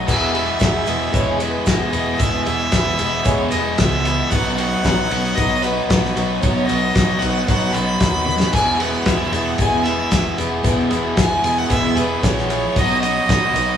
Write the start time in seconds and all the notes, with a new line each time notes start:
0.06 E1 E2 B2 E3 G#3 B3 E4 G#4 E5, kick, crash, shaker
0.21 shaker
0.32 E3 G#3 B3 E4 G#4 E5, ride
0.46 shaker
0.59 E1 E2 B2 E3 G#3 B3 E4 G#4, kick, snare, ride, shaker
0.85 E1 E3 G#3 B3 E4 G#4, ride, shaker
1.01 shaker
1.11 E1 E2 B2 E3 G#3 G#4 C#5, kick, ride, shaker
1.15 B3 E4
1.37 B3 E4 G#4 B4, ride, shaker
1.42 E3 G#3
1.65 E1 E2 B2 E3 G#3 B3 E4 G#4 D#5, kick, snare, ride, shaker
1.92 E1 E3 G#3 B3 E4 G#4, ride, shaker
2.18 E1 E2 B2 E3 G#3 B3 E4 G#4 E5, kick, ride, shaker
2.33 shaker
2.44 E1 B3 E4 G#4 E5, ride, shaker
2.48 E3 G#3
2.59 shaker
2.72 E1 E2 B2 E3 G#3 B3 G#4, kick, snare, ride, shaker
2.76 E4
2.98 E1 G#3 B3 E4 G#4, ride, shaker
3.03 E3
3.12 shaker
3.24 E1 E2 B2 E3 G#3 B3 G#4 C#5, kick, ride, shaker
3.29 E4
3.50 E1 G#3 B3 E4 G#4 D#5, ride, shaker
3.54 E3
3.77 C#2 E2 B2 E3 G#3 B3 E4 E5, kick, snare, ride, shaker
3.83 G#4
3.92 shaker
4.04 E3 G#3 B3 E4 G#4, ride, shaker
4.30 B1 B2 F#3 B3 D#4 F#4 F#5, kick, ride, shaker
4.45 shaker
4.55 D#4 F#4 F#5, ride, shaker
4.60 B3
4.70 shaker
4.83 B1 B2 F#3 B3 D#4 F#4, kick, snare, ride, shaker
5.09 B1 B3 D#4 F#4, ride, shaker
5.24 shaker
5.35 B1 B2 F#3 B3 D#4 D#5, kick, ride, shaker
5.40 F#4
5.62 B3 D#4 F#4 B4, ride, shaker
5.87 B1 B2 F#3 B3 B4, kick, snare, ride, shaker
5.92 D#4 F#4
6.03 snare, shaker
6.16 B1 B3 D#4 F#4, ride, shaker
6.40 B1 B2 F#3 B3 C#5, kick, ride, shaker
6.44 D#4 F#4
6.57 shaker
6.65 F#4 D#5, shaker
6.69 B1 B3 D#4, ride
6.83 shaker
6.93 B1 B2 F#3 B3 D#4 F#4, kick, snare, ride, shaker
7.19 B1 D#4 F#4 F#5, ride, shaker
7.23 B3
7.36 shaker
7.46 B1 B2 F#3 B3 D#4 F#5, kick, ride, shaker
7.51 F#4
7.63 shaker
7.73 B1 B3 D#4 F#4 B5, ride, shaker
7.89 shaker
7.99 D#2 B2 F#3 B3 D#4 F#4, kick, snare, ride, shaker
8.16 shaker
8.26 B3 D#4 F#4, high tom
8.30 shaker
8.40 snare
8.52 E1 E2 B2 E3 B3 E4 G#4 G#5, kick, crash, splash
8.56 shaker
8.70 shaker
8.78 E3 B3 E4 G#4 F#5, ride
8.83 shaker
8.95 shaker
9.04 E1 E2 B2 E3 B3 E4 G#4 E5, kick, snare, ride, shaker
9.32 E1 E3 B3 E4 G#4, ride, shaker
9.45 F#5, shaker
9.58 E1 E2 B2 E3 B3 E4 G#4 G#5, kick, ride, shaker
9.83 B3 E4 G#4 E5, ride, shaker
9.87 E3
10.09 E1 E2 B2 E3 B3 E4, kick, snare, ride, shaker
10.13 G#4
10.26 shaker
10.38 E1 E3 B3 E4 G#4, ride, shaker
10.63 E1 E2 B2 E3 B3 E4 G#4, kick, ride, shaker
10.80 shaker
10.89 E1 E3 B3 E4 G#4, ride, shaker
11.15 E1 E2 B2 E3 B3 E4 G#4 G#5, kick, snare, ride, shaker
11.43 E1 E3 B3 E4 G#4, ride, shaker
11.58 F#5, shaker
11.68 E1 E2 B2 E3 B3 E4 E5, kick, ride, shaker
11.74 G#4
11.95 E1 E3 B3 E4 G#4 B4, ride, shaker
12.22 A#1 E2 B2 E3 B3 E4 G#4 C#5, kick, snare, ride, shaker
12.38 snare, shaker
12.48 B3 E4 G#4, ride, shaker
12.52 E3
12.75 B1 B2 F#3 B3 D#4 F#4 D#5, kick, ride, shaker
12.91 shaker
13.01 D#4 F#4 D#5, ride, shaker
13.06 B3
13.17 shaker
13.29 B1 B2 F#3 B3 D#4 F#4, kick, snare, ride, shaker
13.54 B1 D#4 F#4, ride, shaker
13.59 B3
13.68 shaker